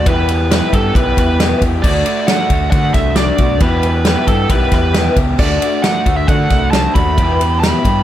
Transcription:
0.06 E2 B2 E3 G3 B3 G4 B4, kick, ride
0.28 E3 G3 B3 G4, ride
0.50 E2 B2 E3 G3 B3 G4 B4, snare, ride
0.73 G2 E3 G3 B3 G4 A4, kick, ride
0.95 B1 E3 G3 B3 G4 B4, kick, ride
1.17 E2 E3 G3 B3 G4 B4, kick, ride
1.39 E2 B2 E3 G3 B3 G4, snare, ride
1.61 E2 E3 G3 B3 G4, kick, ride
1.82 D2 D3 A3 D4 F#4 D5, kick, crash
2.06 A3 D4 F#4, ride
2.27 D3 A3 D4 F#4 F#5, snare, ride
2.50 D2 A3 D4 F#4, kick, ride
2.71 D3 A3 D4 F#4 F#5, kick, ride
2.94 C2 A3 D4 F#4 E5, kick, snare, ride
3.16 D3 A3 D4 F#4 D5, snare, ride
3.38 B1 A3 D4 F#4, kick, ride
3.60 E2 B2 E3 G3 B3 G4 B4, kick, ride
3.83 E3 G3 B3 G4, ride
4.05 E2 B2 E3 G3 B3 G4 B4, snare, ride
4.27 G2 E3 G3 B3 G4 A4, kick, ride
4.49 B1 E3 G3 B3 G4 B4, kick, ride
4.71 E2 E3 G3 B3 G4 B4, kick, snare, ride
4.94 E2 B2 E3 G3 B3 G4, snare, ride
5.16 C#2 E3 G3 B3 G4, kick, ride
5.38 D2 D3 A3 D4 F#4 A4 D5, kick, crash
5.61 A3 D4 F#4, ride
5.82 D3 A3 D4 F#4 A4 D5 F#5, snare, ride
6.05 D2 A3 D4 F#4, kick, ride
6.17 E5
6.28 D3 A3 D4 F#4 A4 D5 F#5, kick, ride
6.50 C2 A3 D4 F#4, kick, snare, ride
6.71 D3 D4 F#4 A4 C5 A5, snare, ride
6.75 A3 D4 F#4
6.94 D#2 A3 D4 F#4 B5, kick, ride
7.17 E2 B2 E3 G3 B3 E4 G4 B4 E5, kick, ride
7.39 E3 G3 B3 G4, ride
7.60 E2 B2 E3 G3 B3 E4 G4 B4 G5 B5, snare, ride
7.84 G2 E3 G3 B3 G4, kick, ride

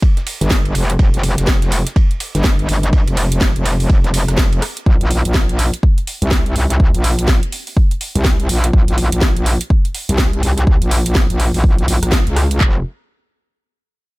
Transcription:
0.02 kick, ride
0.17 snare, closed hi-hat
0.27 open hi-hat, ride
0.41 G1, snare, closed hi-hat
0.50 kick, snare, ride
0.65 closed hi-hat, ride
0.75 F1, open hi-hat, ride
0.90 closed hi-hat
0.99 F1, kick, ride
1.14 F1, closed hi-hat
1.23 open hi-hat, ride
1.38 F1, snare, closed hi-hat
1.47 kick, snare, ride
1.62 snare, closed hi-hat
1.72 open hi-hat, ride
1.86 snare, closed hi-hat
1.96 kick, ride
2.11 closed hi-hat
2.20 open hi-hat, ride
2.35 G1, snare, closed hi-hat
2.44 kick, snare, ride
2.59 closed hi-hat
2.69 G1, open hi-hat, ride
2.83 closed hi-hat
2.93 kick, ride
3.07 F1, closed hi-hat, ride
3.17 open hi-hat, ride
3.32 closed hi-hat
3.41 kick, snare, ride
3.56 F1, closed hi-hat
3.65 open hi-hat, ride
3.80 open hi-hat
3.90 kick, ride
4.04 snare, closed hi-hat
4.14 open hi-hat, ride
4.28 F1, cross-stick, snare, closed hi-hat
4.38 kick, snare, ride
4.52 closed hi-hat, ride
4.62 cross-stick, open hi-hat, ride
4.77 closed hi-hat
4.86 A#1, kick
5.01 A#1, closed hi-hat
5.11 open hi-hat
5.25 A#1, closed hi-hat
5.34 kick, snare
5.49 closed hi-hat
5.59 open hi-hat
5.74 closed hi-hat
5.83 kick
5.98 closed hi-hat
6.07 open hi-hat
6.22 C2, closed hi-hat
6.31 kick, snare
6.46 closed hi-hat
6.56 C2, open hi-hat
6.70 closed hi-hat
6.80 kick
6.94 A#1, closed hi-hat
7.04 open hi-hat
7.19 closed hi-hat
7.28 kick, snare
7.43 closed hi-hat
7.52 open hi-hat
7.67 open hi-hat
7.77 kick
7.91 closed hi-hat
8.01 open hi-hat
8.15 C2, closed hi-hat
8.25 kick, snare
8.40 closed hi-hat
8.49 A#1, open hi-hat
8.64 closed hi-hat
8.73 kick
8.88 A#1, closed hi-hat
8.98 open hi-hat
9.12 A#1, closed hi-hat
9.21 kick, snare
9.37 closed hi-hat
9.46 open hi-hat
9.61 closed hi-hat
9.70 kick
9.85 closed hi-hat
9.95 open hi-hat
10.09 C2, closed hi-hat
10.18 kick, snare
10.33 closed hi-hat
10.43 C2, open hi-hat
10.58 closed hi-hat
10.67 kick
10.82 A#1, closed hi-hat
10.91 open hi-hat
11.06 closed hi-hat
11.15 kick, snare
11.30 A#1, closed hi-hat
11.40 open hi-hat
11.54 A#1, open hi-hat
11.64 kick
11.78 closed hi-hat
11.88 A#1, open hi-hat
12.03 A#1, cross-stick, closed hi-hat
12.12 kick, snare
12.27 C#2, closed hi-hat
12.36 cross-stick, open hi-hat
12.51 closed hi-hat
12.61 F1, kick, clap

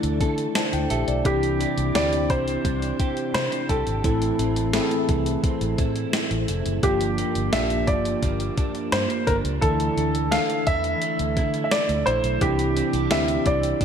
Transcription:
Already playing: D3 E3 A3 D4 E4 A4
0.03 D2, closed hi-hat
0.21 D3 A4, kick, closed hi-hat
0.38 closed hi-hat
0.55 D4 C5 A5, snare, closed hi-hat
0.73 D2 G5, closed hi-hat
0.90 A#1 G4 A4 E5, closed hi-hat
1.08 B1 D5, closed hi-hat
1.24 C2 C3 E3 C4 D4 E4 G4, kick, closed hi-hat
1.43 closed hi-hat
1.60 D4, closed hi-hat
1.78 C2, closed hi-hat
1.94 C4 D4 E4 G4 D5, snare, closed hi-hat
2.13 closed hi-hat
2.30 C2 C4 C5, kick, closed hi-hat
2.48 closed hi-hat
2.65 C2 D4, kick, closed hi-hat
2.82 closed hi-hat
3.00 G4, kick, closed hi-hat
3.17 closed hi-hat
3.34 C3 D4 C5, snare, closed hi-hat
3.52 closed hi-hat
3.69 C2 G4 A4, kick, closed hi-hat
3.87 G#1, closed hi-hat
4.04 A1 A2 E3 A3 C4 E4 A4, kick, closed hi-hat
4.22 closed hi-hat
4.39 A1 C4, closed hi-hat
4.56 closed hi-hat
4.73 A3 C4 E4 G#4, snare, closed hi-hat
4.81 A4
4.91 closed hi-hat
5.09 C2 E3, kick, closed hi-hat
5.26 closed hi-hat
5.44 C4, kick, closed hi-hat
5.61 A1, closed hi-hat
5.78 A2 E4, kick, closed hi-hat
5.96 closed hi-hat
6.13 C4, snare, closed hi-hat
6.31 A1, closed hi-hat
6.48 F1 E4, closed hi-hat
6.66 F#1, closed hi-hat
6.83 G1 G2 F3 A#3 D4 F4 G4, kick, closed hi-hat
7.01 closed hi-hat
7.18 A#3, closed hi-hat
7.35 G1, closed hi-hat
7.52 A#1 A#3 D4 F4 G4 E5, snare, closed hi-hat
7.70 closed hi-hat
7.87 G1 F3 D5, kick, closed hi-hat
8.05 closed hi-hat
8.23 G1 A#3, kick, closed hi-hat
8.40 closed hi-hat
8.57 D4, kick, closed hi-hat
8.75 closed hi-hat
8.92 G2 A#3 C5, snare, closed hi-hat
9.10 closed hi-hat
9.27 G1 D4 A#4, kick, closed hi-hat
9.44 C#2, closed hi-hat
9.61 D2 D3 E3 A3 D4 E4 A4, kick, closed hi-hat
9.80 closed hi-hat
9.97 D2 A3, closed hi-hat
10.15 closed hi-hat
10.31 E3 A3 D4 E4 A4 F5, snare, closed hi-hat
10.50 closed hi-hat
10.67 E2 E3 E5, kick, closed hi-hat
10.84 closed hi-hat
11.02 A3, closed hi-hat
11.19 D2, closed hi-hat
11.37 D3 E4, kick, closed hi-hat
11.54 closed hi-hat
11.64 E5
11.71 A3 D5, snare, closed hi-hat
11.89 D2, closed hi-hat
12.06 A#1 E4 C5, closed hi-hat
12.24 B1, closed hi-hat
12.41 C2 C3 E3 C4 D4 E4 G4, kick, closed hi-hat
12.59 closed hi-hat
12.76 C4, closed hi-hat
12.93 C2 D4, closed hi-hat
13.11 D2 C4 D4 E4 G4 E5, snare, closed hi-hat
13.28 closed hi-hat
13.46 C2 C4 D5, kick, closed hi-hat
13.63 closed hi-hat
13.81 C2 D4, kick, closed hi-hat

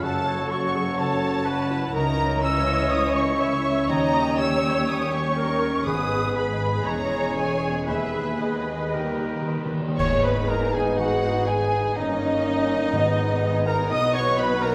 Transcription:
Already playing: C#4 C#5
0.02 F#1 F#2 F#3 F#4 A4 F#5 A5
0.18 C#4
0.26 C#5
0.35 C#5
0.50 F#4 C#5 C#6
0.66 F#5
0.75 G#4
0.83 C#5
0.98 C#3 A4 C#5 A5
1.14 C#4
1.31 C#5
1.46 F#4 B4
1.63 F#5
1.71 E4
1.79 C#5
1.94 C#2 C#3 E3 C#4 D#4 E4 A#4 C#5 D#5 A#5
2.11 C#4
2.27 A#4
2.42 C#4 C#5 E6
2.59 E5
2.75 C#5
2.91 C#3 D#6
3.08 C#4
3.15 C#6
3.24 A#4
3.40 E4 C#5 E5
3.57 E5
3.73 C#5
3.89 D#2 D#3 G3 D#4 G4 C#5 D#5 A#5
4.06 C#4
4.14 D#5
4.23 G4
4.38 G4 C#5 E6
4.56 D#5
4.71 C#5
4.88 A#3 G4 D#6
5.05 C#4
5.13 C#6
5.22 G4
5.37 A#4 C#5
5.54 D#5
5.70 C#5
5.86 G#1 G#2 G#3 B3 G#4 B4 D#6
6.02 B3
6.19 G#4
6.35 G#4 B4 B5
6.53 D#5
6.69 B4
6.85 E1 E2 E3 C#4 G#4 C#5 A#5
7.02 C#4
7.19 G#4
7.36 G#4 C#5 G#5
7.53 G#5
7.71 C#5
7.88 D#2 D#3 B3 G#4 B4 E5
8.06 B3
8.24 G#4
8.41 G#4 B4 D#5
8.60 G#5
8.77 B4
8.94 D#3 G3 A#3 G4 A#4
9.03 D#3
9.11 D#3 D#4
9.19 D#3
9.26 D#3
9.30 A#4
9.35 D#3
9.42 D#3
9.47 D#3 D#5
9.57 D#3
9.65 D#3 G5
9.73 D#3
9.81 D#3 D#5
9.88 D#3
9.98 G#1 G#2 G#3 B3 D#4 G#4 C#5 C#6, concert bass drum, crash
10.12 B3
10.24 G#4 B4 B5
10.37 B4
10.48 A#4 D#5 A#5
10.62 G#5
10.73 G#4 B4 G#5
10.86 G#4
10.98 D#3 F#4 F#5
11.10 B3
11.22 G#4
11.34 B4
11.47 G#4 D#5 G#5
11.60 G#5
11.72 B4
11.84 G#4
11.96 G1 G2 A#3 C#4 D#4 D#5
12.09 C#4
12.21 A#4
12.33 C#5
12.46 D#5
12.58 A#5
12.70 C#5
12.82 A#4
12.93 G#1 G#2 G#3 B3
13.07 B3
13.18 G#4
13.31 B4
13.43 D#5
13.55 G#5
13.66 A#4 B4 A#5
13.79 G#4
13.89 B1 B2 F#3 D#5 D#6
14.03 B3
14.14 F#4 C#5 C#6
14.27 B4
14.37 B4 D#5 B5
14.50 F#5
14.61 A#4 B4 A#5

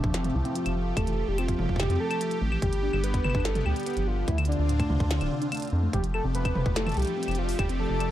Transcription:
Already playing: F3 A3 D4 G4
0.04 F1 F3, kick
0.14 F3 C4, snare, closed hi-hat
0.24 closed hi-hat, mid tom
0.35 C2 C3 E4
0.45 C4, closed hi-hat
0.55 F3 F4, closed hi-hat
0.66 F1 F3, closed hi-hat, claves
0.76 F3
0.97 F1 A3 A4, kick, closed hi-hat, claves
1.07 E3, closed hi-hat
1.28 F1 G4
1.38 C4 F4, closed hi-hat, claves
1.49 F3, kick, closed hi-hat
1.59 F1 F3, mid tom
1.62 mid tom
1.66 F1, kick, mid tom
1.69 mid tom
1.73 kick, mid tom
1.76 C3 G4, snare, closed hi-hat, mid tom, claves
1.83 kick
1.90 F2 C4, closed hi-hat
2.00 F3 A4
2.11 F3, closed hi-hat, claves
2.21 F3, closed hi-hat
2.31 closed hi-hat
2.42 A1 A3
2.52 E3, claves
2.62 G1 D3 B3 G4, kick, closed hi-hat
2.73 closed hi-hat
2.83 D4
2.93 G1 G3, claves
3.04 G3 B4, closed hi-hat
3.14 kick, closed hi-hat
3.24 G1 D3, mid tom, claves
3.30 claves
3.35 G1 D4, kick, claves
3.40 claves
3.45 G3 A4, snare, closed hi-hat
3.55 G3, closed hi-hat, mid tom
3.66 D2 G3 G4, claves
3.76 closed hi-hat
3.80 closed hi-hat
3.83 closed hi-hat
3.86 B3, closed hi-hat
3.90 closed hi-hat
3.93 G1, closed hi-hat
3.97 F3, closed hi-hat
4.07 F4
4.28 D2 A3 C4 E4 F4, kick, closed hi-hat
4.38 D3, closed hi-hat, claves
4.45 D3 D4, closed hi-hat
4.52 closed hi-hat
4.59 D2
4.69 A2, closed hi-hat
4.80 A3, kick, closed hi-hat, claves
4.90 D2 D3, mid tom
5.00 D2 D3, kick
5.11 D3, snare, closed hi-hat
5.21 D1, closed hi-hat, claves
5.31 C3
5.42 D4, closed hi-hat
5.52 A3, closed hi-hat, claves
5.55 closed hi-hat
5.57 closed hi-hat
5.60 closed hi-hat
5.62 closed hi-hat
5.65 closed hi-hat
5.68 closed hi-hat
5.70 F2 D4, closed hi-hat
5.83 A3
5.93 F1 F3 A3 D4 G4 D5, kick, closed hi-hat
6.04 closed hi-hat
6.14 C3 A4, claves
6.24 F1 C4
6.35 F3 B4, closed hi-hat
6.45 kick, closed hi-hat, claves
6.55 F1 F3, mid tom
6.66 F1, kick
6.76 A3 A4, snare, closed hi-hat
6.86 E3, closed hi-hat, mid tom, claves
6.89 closed hi-hat
6.92 closed hi-hat
6.94 C2, closed hi-hat
6.97 G4, closed hi-hat
6.99 closed hi-hat
7.02 closed hi-hat
7.05 F3, closed hi-hat
7.07 closed hi-hat
7.17 C4
7.23 closed hi-hat
7.28 F1 F3, closed hi-hat, claves
7.31 closed hi-hat
7.35 F3 F4, closed hi-hat
7.49 open hi-hat
7.59 F1 C3 G4, kick, closed hi-hat, claves
7.69 C4, closed hi-hat
7.79 F3 A4
7.90 F1
8.00 F3, closed hi-hat, claves

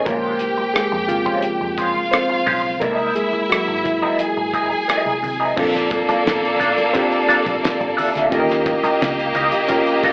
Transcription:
0.05 A#1 C#3 G#3 A#3 C#4 F4 G4 A#4 C5 G5, kick, closed hi-hat, low conga
0.39 closed hi-hat, muted conga, high conga
0.58 muted clean electric guitar stroke, high conga
0.74 G#3 G#4, muted clean electric guitar stroke, muted fingered electric bass stroke, cross-stick, closed hi-hat, muted conga
0.92 F2, muted clean electric guitar stroke
1.08 C#3 F3 G#3 C4 F4, closed hi-hat, low conga
1.26 G#3 C#4 F4 C5, kick, high conga
1.42 muted clean electric guitar stroke, muted fingered electric bass stroke, closed hi-hat, muted conga
1.61 F2, muted clean electric guitar stroke
1.78 G#3 C#4 F4 C5 F5, kick, closed hi-hat
1.96 muted clean electric guitar stroke, high conga
2.11 C4 C5, muted clean electric guitar stroke, cross-stick, closed hi-hat
2.29 muted clean electric guitar stroke, high conga
2.46 B1 G#3 C#4 F4 C5, kick, open hi-hat, muted conga
2.64 muted clean electric guitar stroke
2.80 C2 E3 G#3 A#3 B3 D#4 E4 A4 A#4 D5 E5, kick, closed hi-hat, muted conga, low conga
2.94 C4 E4 A#4 D#5
3.15 G#3 G#4, closed hi-hat, high conga
3.33 muted clean electric guitar stroke, high conga
3.50 F#3 F#4, muted clean electric guitar stroke, muted fingered electric bass stroke, cross-stick, closed hi-hat
3.68 G#1, muted clean electric guitar stroke
3.84 E3 E4, kick, closed hi-hat, muted conga, low conga
4.02 C4 E4 A#4 D#5, high conga
4.19 G#4 G#5, muted clean electric guitar stroke, muted fingered electric bass stroke, closed hi-hat, muted conga, high conga
4.37 G#1, muted clean electric guitar stroke
4.54 C4 E4 A#4 D#5, kick, closed hi-hat, muted conga
4.71 muted clean electric guitar stroke, high conga
4.88 C4 E4 A#4 D#5, muted fingered electric bass stroke, cross-stick, closed hi-hat
5.06 C2, high conga
5.23 C3, muted clean electric guitar stroke, open hi-hat, low conga
5.40 C4 E4 A#4 D#5
5.56 A#1 A#3 C4 D4 F4 A4 D5, kick, crash, low conga
5.74 snare, closed hi-hat
5.91 muted clean electric guitar stroke, kick, closed hi-hat, muted conga, high conga
6.09 D4 F4 A4 D5, muted fingered electric bass stroke, closed hi-hat, high conga
6.26 A1, muted clean electric guitar stroke, snare, closed hi-hat, muted conga
6.45 closed hi-hat
6.59 A1 D4 F4 A4 D5, closed hi-hat, muted conga, low conga
6.77 muted clean electric guitar stroke, closed hi-hat, high conga
6.93 C4 D4 F4 G4, kick, closed hi-hat
7.11 muted clean electric guitar stroke, closed hi-hat
7.28 D4 F4 A4 D5, muted fingered electric bass stroke, closed hi-hat, muted conga
7.46 A#1, muted clean electric guitar stroke, kick, closed hi-hat, high conga
7.63 muted clean electric guitar stroke, muted fingered electric bass stroke, snare, closed hi-hat, muted conga
7.80 A1, muted clean electric guitar stroke, closed hi-hat, high conga
7.97 D4 F4 A4 E5, open hi-hat, muted conga, low conga
8.14 D2 D4 F4 A4 E5, snare, closed hi-hat
8.30 D#2 A#3 C#4 F4 G4 A4 A#4 D#5, kick, closed hi-hat, low conga
8.40 A#4
8.49 snare, closed hi-hat
8.66 muted clean electric guitar stroke, kick, closed hi-hat, high conga
8.83 C#4 G4 A#4 D#5, muted fingered electric bass stroke, closed hi-hat, high conga
9.01 C#2, muted clean electric guitar stroke, snare, closed hi-hat
9.19 closed hi-hat
9.35 C#2 C#4 G4 A#4 D#5, closed hi-hat, low conga
9.52 muted clean electric guitar stroke, closed hi-hat, high conga
9.68 C#4 F4 G4 A#4, kick, closed hi-hat
9.86 muted clean electric guitar stroke, closed hi-hat
10.04 C#4 G4 A#4 D#5, muted fingered electric bass stroke, kick, closed hi-hat, muted conga

